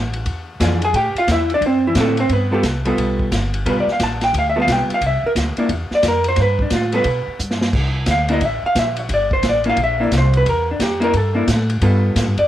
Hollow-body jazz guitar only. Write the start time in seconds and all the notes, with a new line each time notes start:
0.60 E3 D4 F4 G#4
0.85 G#4 G#5
0.96 G4 G5
1.18 F4 F5
1.32 E4 E5
1.54 D4 D5
1.66 C4 C5
1.87 E3 E4
1.96 D3 F#3 C4 E4
2.00 A3 A4
2.20 C4 C5
2.33 B3 B4
2.51 G3 B3 F4 G4 A4
2.85 G3 B3 F4 A4
3.66 G3 B3 F4 A4 B4
3.80 D5
3.92 F5
4.03 A5
4.24 G5
4.39 F5
4.49 E5
4.56 G3 B3 F4 A4
4.62 F5
4.72 G5
4.94 F5
5.07 E5
5.26 A#4
5.58 A#3 D4 E4
5.95 D5
6.08 A#4
6.28 C5
6.42 B4
6.62 D4
6.75 F4
6.93 G3 B3 F4 A4 B4
8.11 F5
8.29 A#3 D4 E4 D#5
8.45 E5
8.66 F5
8.79 E5
8.99 C#5
9.14 D5
9.33 C5
9.49 D5
9.65 A#3 D4 E4
9.69 F5
9.84 E5
10.00 A#3 D4 E4 D5
10.18 C5
10.37 B4
10.49 A#4
10.71 D4
10.82 G4
11.00 A#3 D4 E4 A#4
11.17 A4
11.34 A#3 D4 E4
11.82 G3 B3 F4 A4
12.39 D5